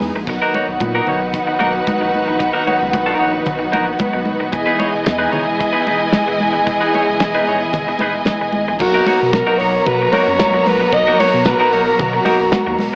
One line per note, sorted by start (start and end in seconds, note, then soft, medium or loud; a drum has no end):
0.00 0.12 E2 medium
0.00 0.23 E3 medium
0.00 0.23 G#3 medium
0.00 0.24 B3 medium
0.00 0.24 D#4 medium
0.00 0.23 G#4 medium
0.00 snare soft
0.00 open hi-hat medium
0.00 high conga medium
0.15 0.25 A#1 loud
0.15 muted clean electric guitar stroke soft
0.27 0.38 B1 loud
0.27 4.50 D#3 medium
0.27 4.50 F#3 medium
0.27 8.76 B3 medium
0.27 4.49 D#4 medium
0.27 4.50 F#4 medium
0.27 4.50 B4 medium
0.27 4.50 F#5 medium
0.27 muted clean electric guitar stroke soft
0.27 kick medium
0.27 crash medium
0.42 0.53 A#3 medium
0.42 0.53 D#4 medium
0.42 0.54 F#4 medium
0.42 0.55 A#4 medium
0.54 0.66 A#3 medium
0.54 0.67 D#4 medium
0.54 0.67 F#4 medium
0.54 0.67 C#5 medium
0.54 muted conga soft
0.68 0.78 B1 medium
0.68 muted clean electric guitar stroke soft
0.80 1.01 A#2 medium
0.80 muted clean electric guitar stroke soft
0.80 kick loud
0.80 closed hi-hat medium
0.80 high conga medium
0.95 1.06 A#3 medium
0.95 1.06 D#4 medium
0.95 1.07 F#4 medium
0.95 1.08 A#4 medium
1.07 1.38 B1 medium
1.07 1.19 A#3 medium
1.07 1.20 D#4 medium
1.07 1.20 F#4 medium
1.07 1.20 C#5 medium
1.07 low conga medium
1.34 kick medium
1.34 closed hi-hat medium
1.47 muted clean electric guitar stroke soft
1.59 1.81 B1 medium
1.59 1.75 A#3 medium
1.59 1.73 D#4 medium
1.59 1.73 F#4 medium
1.59 1.72 A#4 medium
1.59 muted conga medium
1.73 muted clean electric guitar stroke soft
1.87 muted clean electric guitar stroke soft
1.87 kick loud
1.87 closed hi-hat medium
1.87 high conga medium
2.01 2.11 A#1 medium
2.01 muted clean electric guitar stroke soft
2.14 2.25 G#1 loud
2.14 high conga medium
2.28 2.37 A#1 medium
2.28 muted clean electric guitar stroke soft
2.39 2.51 B1 loud
2.39 muted clean electric guitar stroke soft
2.39 kick medium
2.39 closed hi-hat medium
2.39 muted conga soft
2.53 2.65 A#3 medium
2.53 2.65 D#4 medium
2.53 2.66 F#4 medium
2.53 2.67 A#4 medium
2.66 2.79 A#3 medium
2.66 2.79 D#4 medium
2.66 2.79 F#4 medium
2.66 2.79 C#5 medium
2.66 muted conga medium
2.80 2.91 C#2 medium
2.80 muted clean electric guitar stroke soft
2.93 3.14 B1 medium
2.93 muted clean electric guitar stroke soft
2.93 kick loud
2.93 closed hi-hat medium
2.93 high conga medium
3.06 3.18 A#3 medium
3.06 3.18 D#4 medium
3.06 3.18 F#4 medium
3.06 3.20 A#4 medium
3.19 3.40 A#1 medium
3.19 3.32 A#3 soft
3.19 3.32 D#4 medium
3.19 3.32 F#4 medium
3.19 3.32 C#5 medium
3.33 muted clean electric guitar stroke soft
3.46 3.67 B1 loud
3.46 kick medium
3.46 closed hi-hat medium
3.46 low conga medium
3.59 muted clean electric guitar stroke soft
3.72 3.94 A#1 loud
3.72 3.88 A#3 medium
3.72 3.87 D#4 medium
3.72 3.87 F#4 medium
3.72 3.85 A#4 medium
3.72 muted conga medium
3.87 muted clean electric guitar stroke soft
3.99 muted clean electric guitar stroke soft
3.99 kick loud
3.99 closed hi-hat medium
3.99 high conga medium
4.13 4.24 B1 medium
4.13 muted clean electric guitar stroke soft
4.25 4.38 E1 medium
4.25 high conga medium
4.40 4.51 D#1 medium
4.40 muted clean electric guitar stroke soft
4.52 4.64 E1 loud
4.52 8.77 E3 medium
4.52 8.77 G#3 medium
4.52 8.76 E4 medium
4.52 8.77 G#4 medium
4.52 8.76 D#5 medium
4.52 8.77 D#5 medium
4.52 8.76 G#5 medium
4.52 muted clean electric guitar stroke soft
4.52 kick loud
4.52 closed hi-hat medium
4.52 muted conga soft
4.66 4.77 B3 medium
4.66 4.77 D#4 medium
4.66 4.78 G#4 medium
4.66 4.79 B4 medium
4.78 4.92 B3 medium
4.78 4.92 D#4 medium
4.78 4.92 G#4 medium
4.78 4.92 C#5 medium
4.78 muted conga medium
4.93 5.04 E1 medium
4.93 muted clean electric guitar stroke soft
5.04 5.27 E2 loud
5.04 muted clean electric guitar stroke soft
5.04 kick loud
5.04 snare loud
5.04 closed hi-hat medium
5.04 high conga medium
5.18 5.29 B3 medium
5.18 5.30 D#4 medium
5.18 5.30 G#4 medium
5.18 5.32 B4 medium
5.31 5.65 E1 medium
5.31 5.44 B3 medium
5.31 5.45 D#4 medium
5.31 5.45 G#4 medium
5.31 5.45 C#5 medium
5.31 low conga medium
5.46 muted clean electric guitar stroke soft
5.59 muted clean electric guitar stroke soft
5.59 kick medium
5.59 closed hi-hat medium
5.73 5.86 B3 medium
5.73 5.87 D#4 medium
5.73 5.87 G#4 medium
5.73 5.87 B4 medium
5.87 6.08 E1 medium
5.87 5.99 B3 medium
5.87 6.00 D#4 medium
5.87 6.00 G#4 medium
5.87 6.00 B4 medium
5.87 muted conga soft
6.01 muted clean electric guitar stroke soft
6.13 muted clean electric guitar stroke soft
6.13 kick loud
6.13 snare loud
6.13 closed hi-hat medium
6.13 high conga medium
6.28 6.38 D#1 medium
6.28 muted clean electric guitar stroke soft
6.40 6.52 E1 loud
6.40 high conga medium
6.53 6.65 D#1 medium
6.53 muted clean electric guitar stroke soft
6.66 6.78 E1 loud
6.66 muted clean electric guitar stroke soft
6.66 kick loud
6.66 closed hi-hat medium
6.81 6.92 B3 medium
6.81 6.92 D#4 medium
6.81 6.93 G#4 medium
6.81 6.94 B4 medium
6.93 7.06 B3 medium
6.93 7.06 D#4 medium
6.93 7.06 G#4 medium
6.93 7.07 C#5 medium
6.93 muted conga medium
7.09 7.18 F#1 medium
7.20 7.41 E1 medium
7.20 muted clean electric guitar stroke soft
7.20 kick loud
7.20 snare loud
7.20 closed hi-hat medium
7.20 high conga medium
7.35 7.46 B3 medium
7.35 7.46 D#4 medium
7.35 7.46 G#4 medium
7.35 7.48 B4 medium
7.47 7.68 D#1 loud
7.47 7.59 B3 medium
7.47 7.59 D#4 medium
7.47 7.60 G#4 medium
7.47 7.60 C#5 medium
7.61 muted clean electric guitar stroke soft
7.73 7.94 E1 medium
7.73 kick medium
7.73 closed hi-hat medium
7.73 low conga medium
7.88 muted clean electric guitar stroke soft
7.99 8.21 D#1 medium
7.99 8.16 B3 medium
7.99 8.15 D#4 medium
7.99 8.14 G#4 medium
7.99 8.14 B4 medium
7.99 muted conga medium
8.15 muted clean electric guitar stroke soft
8.25 muted clean electric guitar stroke soft
8.25 kick loud
8.25 snare loud
8.25 closed hi-hat medium
8.25 high conga medium
8.41 8.51 E1 medium
8.41 muted clean electric guitar stroke soft
8.52 8.65 G#1 loud
8.52 high conga medium
8.68 8.78 A#1 medium
8.68 muted clean electric guitar stroke medium
8.79 9.01 B1 loud
8.79 12.95 B2 medium
8.79 12.95 F#3 medium
8.79 12.95 A#3 medium
8.79 12.95 B3 medium
8.79 9.34 F#4 loud
8.79 12.95 F#4 medium
8.79 12.95 A#4 medium
8.79 12.95 A#5 medium
8.79 muted clean electric guitar stroke soft
8.79 kick loud
8.79 crash loud
8.79 muted conga soft
8.94 9.05 A#3 medium
8.94 9.05 D#4 medium
8.94 9.06 F#4 medium
8.94 9.07 A#4 loud
9.06 9.19 A#3 medium
9.06 9.19 D#4 medium
9.06 9.19 F#4 medium
9.06 9.19 C#5 medium
9.06 open hi-hat medium
9.06 muted conga medium
9.21 9.42 B2 medium
9.21 muted clean electric guitar stroke soft
9.33 9.60 A#4 medium
9.33 muted clean electric guitar stroke soft
9.33 kick loud
9.33 snare loud
9.33 closed hi-hat medium
9.33 high conga medium
9.47 9.59 A#3 medium
9.47 9.59 D#4 medium
9.47 9.60 F#4 medium
9.47 9.60 A#4 medium
9.58 9.81 B1 loud
9.58 9.72 A#3 medium
9.58 9.73 D#4 medium
9.58 9.73 F#4 medium
9.58 9.87 C#5 loud
9.58 9.73 C#5 medium
9.58 open hi-hat medium
9.75 muted clean electric guitar stroke soft
9.86 10.07 B2 loud
9.86 10.14 B4 loud
9.86 kick loud
9.86 closed hi-hat medium
10.02 muted clean electric guitar stroke soft
10.12 10.29 A#3 medium
10.12 10.28 D#4 medium
10.12 10.28 F#4 medium
10.12 10.27 A#4 medium
10.12 10.69 C#5 loud
10.12 open hi-hat medium
10.12 muted conga medium
10.28 10.41 F#2 medium
10.28 muted clean electric guitar stroke medium
10.39 10.60 B1 medium
10.39 muted clean electric guitar stroke soft
10.39 kick loud
10.39 snare loud
10.39 closed hi-hat medium
10.39 high conga medium
10.54 muted clean electric guitar stroke medium
10.66 10.87 A#1 loud
10.66 10.95 B4 loud
10.66 snare soft
10.66 open hi-hat medium
10.66 high conga medium
10.80 muted clean electric guitar stroke soft
10.92 11.13 B1 loud
10.92 11.21 D#5 loud
10.92 muted clean electric guitar stroke soft
10.92 kick loud
10.92 closed hi-hat medium
11.07 11.18 A#3 medium
11.07 11.19 D#4 medium
11.07 11.19 F#4 medium
11.07 11.20 A#4 medium
11.20 11.32 A#3 medium
11.20 11.32 D#4 medium
11.20 11.32 F#4 medium
11.20 11.47 C#5 loud
11.20 11.33 C#5 medium
11.20 open hi-hat medium
11.20 muted conga medium
11.34 11.54 B2 loud
11.34 muted clean electric guitar stroke soft
11.45 11.74 B4 loud
11.45 muted clean electric guitar stroke soft
11.45 kick loud
11.45 snare loud
11.45 closed hi-hat medium
11.45 high conga medium
11.60 11.72 A#3 medium
11.60 11.72 D#4 medium
11.60 11.72 F#4 medium
11.60 11.73 A#4 medium
11.72 11.94 B1 loud
11.72 11.85 A#3 medium
11.72 11.85 D#4 medium
11.72 11.86 F#4 medium
11.72 12.03 A#4 loud
11.72 11.86 C#5 medium
11.72 open hi-hat medium
11.87 muted clean electric guitar stroke soft
11.99 12.20 B2 loud
11.99 12.80 F#4 medium
11.99 kick loud
11.99 closed hi-hat medium
11.99 low conga medium
12.13 muted clean electric guitar stroke soft
12.25 12.41 A#3 medium
12.25 12.40 D#4 loud
12.25 12.40 F#4 medium
12.25 12.39 A#4 loud
12.25 open hi-hat medium
12.25 muted conga medium
12.40 12.50 B1 medium
12.40 muted clean electric guitar stroke soft
12.52 muted clean electric guitar stroke soft
12.52 kick loud
12.52 snare loud
12.52 closed hi-hat medium
12.52 high conga medium
12.67 12.76 D#2 medium
12.67 muted clean electric guitar stroke soft
12.79 12.90 E1 loud
12.79 snare soft
12.79 open hi-hat medium
12.79 high conga medium